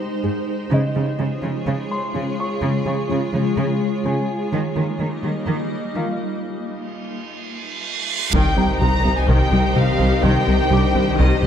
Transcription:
Already playing: G#3 D#4 G4 A#4 C5 G5 A#5
0.24 G#2 G#4
0.71 C#3 G#3 F4 G#4 C#5 D#5
0.96 C#3 G#3
1.19 C#3 G#3
1.43 C#3 F3
1.66 C#3
1.91 C6
2.14 C#3 C#4
2.40 C#6
2.62 C#3
2.86 C#3 G#3
3.09 C#3 G#3
3.33 C#3 F3
3.57 C#3
4.05 C#3 C#4 G#5
4.52 D#3 G3 A#3 D#4 D#5
4.76 D#3 A#3
5.00 D#3 A#3
5.24 D#3 G3
5.47 D#3
5.95 D#3 D#4 F4 F5
6.43 reverse cymbal
8.33 C2 C3 D#3 G3 D#4 G4 C5 G5, taiko, impact
8.57 C2 C3 C4 A#5
8.81 C2 C3 G3 A#5
9.04 C2 C3 C4
9.17 G#5
9.28 C2 C3 D#3 G5
9.51 C2 C3 G3
9.75 C2 C3 G3 F5
9.99 C2 C3 C4
10.22 C2 C3 D#3 G5
10.47 C2 C3 C4
10.71 C2 C3 G3 D4 D6
10.94 C2 C3 C4
11.18 C2 C3 D#3 D#5
11.41 C2 C3 G3

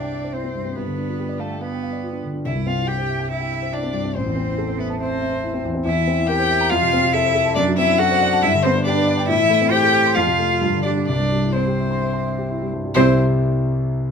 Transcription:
Already playing: C2 G2 C4 D4 E4 G4 C5 D5 E5 G5
0.02 G5
0.12 E5
0.24 C5
0.33 C4 E4 C5
0.44 C4
0.55 G2
0.65 C4
0.76 G2 B3 B4
0.87 D3
0.98 D4
1.09 F4
1.19 G4
1.29 D5
1.40 A3 A4 F5
1.51 G5
1.61 B3 B4 F5
1.72 G5
1.83 F5
1.93 D5
2.03 F4
2.13 D4
2.23 D3
2.34 D4
2.45 C2 E4 E5
2.55 G2
2.67 C4 F4 F5
2.77 E4
2.87 G4 G5
2.98 C5
3.09 E5
3.20 G5
3.30 E4 E5
3.41 G5
3.52 E5
3.62 C5
3.72 D4 E4 D5
3.83 C4
3.93 G2
4.04 C4
4.15 A1 C4 C5
4.26 E2
4.36 C4
4.47 E4
4.58 A4
4.68 C5
4.78 B3 B4 E5
4.90 A5
5.00 C4 C5 E5
5.21 E5
5.33 C5
5.43 E4
5.54 C4
5.65 E2
5.75 C4
5.85 E2 E4 E5
5.96 E3
6.07 C4
6.18 E4
6.27 G4 A#4 G5
6.39 C5
6.50 E5
6.61 A#5
6.69 F2 F4 F5
6.83 C3
6.93 C4
7.04 C3
7.13 E4 A4 E5
7.25 C5
7.35 A4
7.46 A5
7.55 F#2 D4 D5
7.67 F#3
7.77 C4 E4 E5
7.88 D4
7.98 F#4 A4 F#5
8.11 C5
8.22 D5
8.33 A5
8.42 G2 E4 E5
8.54 D3
8.63 B3 C4 C5
8.75 D4
8.85 D4 G4 D5
8.96 B4
9.08 D5
9.18 G5
9.28 A2 E4 E5
9.39 E3
9.50 A3
9.61 C4
9.71 G4 C5 G5
9.84 A4
9.94 C5
10.06 C6
10.15 F2 F4 F5
10.27 C3
10.39 A3
10.50 F4
10.61 G2
10.74 D3
10.83 G3 D4 D5
10.97 D4
11.05 C2 D4 D5
11.20 G2
11.32 G3
11.43 E4
11.53 C4 C5
11.67 G4
11.80 E5
11.91 C6
12.02 E5
12.13 C6
12.26 E5
12.38 G4
12.50 E4
12.62 G3
12.73 G2
12.85 G3
12.94 C2 C3 G3 C4 E4 C5 E5

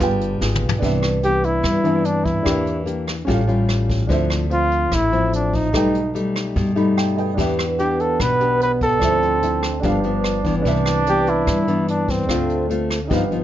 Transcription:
Already playing: B3 F4
0.00 G1 G3 D4 G#4 B4 G5, kick, closed hi-hat
0.21 closed hi-hat
0.41 G#1 B3 F4 G#4, snare
0.55 mid tom
0.62 B1
0.69 floor tom
0.79 C2 C3 E3 B3 D4 B4, kick, closed hi-hat
0.83 C4 D4 E5
1.03 cross-stick, closed hi-hat
1.23 E3 B3 D4 G4, closed hi-hat
1.44 E4, closed hi-hat
1.63 G2, kick, cross-stick, closed hi-hat
1.83 E3 B3 C4 D4 B4 E5, closed hi-hat
2.05 D4, closed hi-hat
2.25 E4, kick, closed hi-hat
2.43 E2 E3 A#3 D4 G4, kick, cross-stick, closed hi-hat
2.47 A#4 E5
2.67 closed hi-hat
2.86 A#3 D4 G4, closed hi-hat
3.08 cross-stick, closed hi-hat
3.25 A1 A2 G3 C#4 F4 G4, kick, closed hi-hat
3.29 A4 F5
3.47 G3 C#4 F4, closed hi-hat
3.69 cross-stick, closed hi-hat
3.90 kick, closed hi-hat
4.07 D2 D3 F3 C4 D4 E4, kick, closed hi-hat
4.12 C5 E5
4.30 cross-stick, closed hi-hat
4.50 F3 C4 F4, closed hi-hat
4.72 closed hi-hat
4.92 A1 A2 E4, kick, cross-stick, closed hi-hat
5.12 F3 C4 E4, closed hi-hat
5.33 D4, closed hi-hat
5.53 D#4, kick, closed hi-hat
5.70 B1 B2 G3 A3 D#4 A4, kick, cross-stick, closed hi-hat
5.74 D#4 B4 G5
5.95 closed hi-hat
6.15 G3 A3 D#4, closed hi-hat
6.36 cross-stick, closed hi-hat
6.56 G2 B2, kick, closed hi-hat
6.76 G3 A3 D#4 B5, closed hi-hat
6.98 G5, cross-stick, closed hi-hat
7.16 D#4 A4 B4 D#5 G5, closed hi-hat
7.34 E3 B3 D4 G4 B4, kick
7.38 E2 E5, closed hi-hat
7.59 cross-stick, closed hi-hat
7.79 B3 D4 G4, closed hi-hat
8.00 A4, closed hi-hat
8.20 B1 B2 B4, kick, cross-stick, closed hi-hat
8.40 B3 D4 G4, closed hi-hat
8.61 B4, closed hi-hat
8.81 A4, kick, closed hi-hat
8.98 D2 D3 F3 C4 D4, kick, cross-stick, closed hi-hat
9.02 C4 E4 C5 E5
9.22 closed hi-hat
9.42 F3 C4 E4, closed hi-hat
9.63 cross-stick, closed hi-hat
9.80 G1 G2 D4 G4, kick, closed hi-hat
9.84 F3 B3 D4 B4 F5
10.03 F3 B3 D4, closed hi-hat
10.24 cross-stick, closed hi-hat
10.45 E3 B3 D4, kick, closed hi-hat
10.58 C#4 D4
10.63 C2 C3 C4 D4 B4, kick, closed hi-hat
10.68 E5
10.86 cross-stick, closed hi-hat
11.06 E3 B3 D4 G4, closed hi-hat
11.27 E4, closed hi-hat
11.47 G2, kick, cross-stick, closed hi-hat
11.67 E3 B3 D4, closed hi-hat
11.88 D4, closed hi-hat
12.08 C4, kick, closed hi-hat
12.26 D2 D3 A3 C4 D4 F4 A4, kick, cross-stick, closed hi-hat
12.31 C5 F5
12.50 closed hi-hat
12.70 A3 C4 F4, closed hi-hat
12.91 cross-stick, closed hi-hat
13.04 C#4 D#4
13.09 G1 G2 F3 B3 D#4 G4 B4, kick, closed hi-hat
13.13 F5
13.31 F3 B3 D#4, closed hi-hat

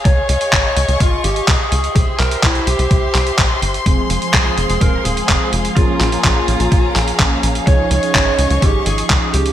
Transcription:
Already playing: G#4 F5
0.05 C#2 C#5 D#5 C#6, kick, closed hi-hat
0.29 C#2 C#5, closed hi-hat
0.41 closed hi-hat
0.53 G#1, kick, clap, closed hi-hat
0.77 C#2, closed hi-hat
0.89 C#2, closed hi-hat
1.00 G#1 F4, kick, closed hi-hat
1.24 G#1 G4, closed hi-hat
1.36 closed hi-hat
1.48 C#2 G#4, kick, clap, closed hi-hat
1.72 C#2, closed hi-hat
1.84 closed hi-hat
1.96 C2 G4 G#4 C5 E5 C6, kick, closed hi-hat
2.19 C2 A#4, clap, closed hi-hat
2.31 closed hi-hat
2.43 C2 E4, kick, clap, closed hi-hat
2.55 closed hi-hat
2.67 C2 G4, closed hi-hat
2.79 C2, closed hi-hat
2.91 C2, kick, closed hi-hat
3.15 C2, clap, closed hi-hat
3.27 closed hi-hat
3.38 A#1, kick, clap, closed hi-hat
3.62 G1, closed hi-hat
3.74 closed hi-hat
3.86 F1 F3 G#3 C4 G#4 C5 F5, kick, closed hi-hat
4.10 F1, closed hi-hat
4.22 F3 G#3 C4 G#4, closed hi-hat
4.34 C2 G#4, kick, clap, closed hi-hat
4.58 F1, closed hi-hat
4.69 F1, closed hi-hat
4.81 D#1 A#4, kick, closed hi-hat
5.05 D#1 G#4, closed hi-hat
5.17 closed hi-hat
5.29 F1, kick, clap, closed hi-hat
5.53 F1, closed hi-hat
5.65 closed hi-hat
5.76 A#1 F3 A#3 C#4 F4 G#4 C#5 A#5, kick, closed hi-hat
6.00 A#1 F4, clap, closed hi-hat
6.12 F3 A#3 C#4 G#4, closed hi-hat
6.24 A#1, kick, clap, closed hi-hat
6.48 A#1, closed hi-hat
6.60 A#1, closed hi-hat
6.72 A#1, kick, closed hi-hat
6.96 A#1, clap, closed hi-hat
7.08 closed hi-hat
7.19 A#1, kick, clap, closed hi-hat
7.43 A#1, closed hi-hat
7.55 closed hi-hat
7.67 C#2 F3 C#4 D#4 G#4 C#5 D#5 C#6, kick, closed hi-hat
7.91 C#2 C#5, closed hi-hat
8.03 F3 C#4 D#4 G#4, closed hi-hat
8.15 G#1, kick, clap, closed hi-hat
8.39 C#2, closed hi-hat
8.50 C#2, closed hi-hat
8.62 G#1 G4, kick, closed hi-hat
8.86 G#1 G#4, closed hi-hat
8.98 closed hi-hat
9.10 C#2, kick, clap, closed hi-hat
9.34 C#2 G4, closed hi-hat
9.46 closed hi-hat

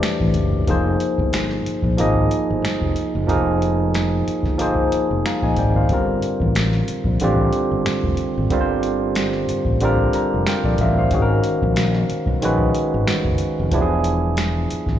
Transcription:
Already playing: E3 A3 D4 G4 C5 D5
0.03 finger snap, snare, closed hi-hat
0.20 A1, kick
0.34 F#1, kick, closed hi-hat
0.52 kick
0.67 F1 F3 A#3 D#4 G#4 C5, kick, closed hi-hat
1.00 closed hi-hat
1.18 G1, kick
1.33 finger snap, snare, closed hi-hat
1.51 snare
1.66 muted fretless electric bass stroke, closed hi-hat
1.82 A#1, kick
1.97 G#1 F3 A#3 D#4 G#4 D#5, closed hi-hat
2.15 kick
2.31 closed hi-hat
2.50 G1
2.65 finger snap, muted fretless electric bass stroke, snare, closed hi-hat
2.81 F1, kick
2.96 closed hi-hat
3.15 F#1
3.27 F1 F3 A#3 D#4 G#4 A#4, kick, closed hi-hat
3.62 closed hi-hat
3.94 finger snap, snare, closed hi-hat
4.28 muted fretless electric bass stroke, closed hi-hat
4.43 G1, kick, snare
4.58 F3 A#3 D#4 G#4 C5, closed hi-hat
4.75 kick
4.92 muted fretless electric bass stroke, closed hi-hat
5.11 F1
5.26 F5 A#5, finger snap, snare, closed hi-hat
5.42 A#1 D#5 G#5, kick
5.57 G#1 D5 G5, kick, closed hi-hat
5.74 C5 F5, kick
5.89 G1 D3 G3 C4 F4, kick, closed hi-hat
5.94 A#4
6.22 closed hi-hat
6.40 A1, kick
6.55 finger snap, snare, closed hi-hat
6.73 snare
6.88 muted fretless electric bass stroke, closed hi-hat
7.04 A#1, kick
7.20 A1 D3 G3 C4 F4, closed hi-hat
7.24 G4
7.36 kick
7.53 closed hi-hat
7.72 G1
7.86 finger snap, muted fretless electric bass stroke, snare, closed hi-hat
8.03 F1, kick
8.17 closed hi-hat
8.38 G#1
8.50 G1 D3 G3 C4 F4 A#4, kick, closed hi-hat
8.61 C5
8.83 closed hi-hat
9.15 finger snap, snare, closed hi-hat
9.33 snare
9.49 muted fretless electric bass stroke, closed hi-hat
9.65 A1, kick
9.81 D3 G3 C4 F4, closed hi-hat
9.85 A#4
9.97 kick
10.13 A#5, muted fretless electric bass stroke, closed hi-hat
10.34 F1
10.47 F4 A#4 G5, finger snap, snare, closed hi-hat
10.64 A#1 A4 D5, kick
10.78 A1 A#4 E5 F5, kick, closed hi-hat
10.96 C5 F5, kick
11.11 G#1 D#3 G#3 C#4 F#4, kick, closed hi-hat
11.15 G#4
11.22 A#4
11.44 closed hi-hat
11.62 A#1, kick
11.76 finger snap, snare, closed hi-hat
11.95 snare
12.10 muted fretless electric bass stroke, closed hi-hat
12.26 B1, kick
12.42 A#1 D#3 G#3 C#4 F#4 B4, closed hi-hat
12.58 kick
12.75 closed hi-hat
12.94 G#1
13.08 finger snap, muted fretless electric bass stroke, snare, closed hi-hat
13.25 F#1, kick
13.38 closed hi-hat
13.60 F1
13.71 E1 F3 B3 D4 E4 G4, kick, closed hi-hat
13.82 G#4
14.04 closed hi-hat
14.37 finger snap, snare, closed hi-hat
14.71 muted fretless electric bass stroke, closed hi-hat
14.86 G#1, kick, snare

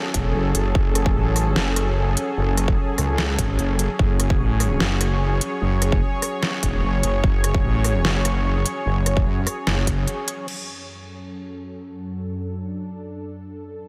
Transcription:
Already playing: F#3 C#4 G#4 A4
0.14 E1, kick, closed hi-hat
0.34 F#1
0.55 F#1, closed hi-hat
0.75 F#1, kick
0.95 cross-stick, closed hi-hat
1.06 kick
1.16 A1
1.36 cross-stick, open hi-hat
1.56 F#1, snare
1.76 cross-stick, closed hi-hat
2.17 closed hi-hat
2.37 F#1
2.58 cross-stick, closed hi-hat
2.68 kick
2.98 C#2, cross-stick, open hi-hat
3.18 snare
3.39 G#1, kick, closed hi-hat
3.59 F#1, closed hi-hat
3.79 closed hi-hat
3.99 F#1 C#5, kick
4.20 cross-stick, closed hi-hat
4.30 kick
4.40 A1
4.60 cross-stick, open hi-hat
4.80 F#1, snare
5.01 cross-stick, closed hi-hat
5.41 closed hi-hat
5.62 F#1
5.82 cross-stick, closed hi-hat
5.92 kick
6.22 cross-stick, open hi-hat
6.43 snare
6.63 E1, kick, closed hi-hat
6.83 F#1
7.03 F#1, closed hi-hat
7.24 F#1, kick
7.44 cross-stick, closed hi-hat
7.54 kick
7.64 A1
7.84 cross-stick, open hi-hat
8.05 F#1, snare
8.25 cross-stick, closed hi-hat
8.66 closed hi-hat
8.86 F#1
9.06 cross-stick, closed hi-hat
9.17 kick
9.26 F#2
9.47 cross-stick, open hi-hat
9.67 F#1, snare
9.87 kick, closed hi-hat
10.08 closed hi-hat
10.28 closed hi-hat
10.48 F#2 F#3 C#4 A4, crash
12.10 D4
13.72 A2 E3 C#4

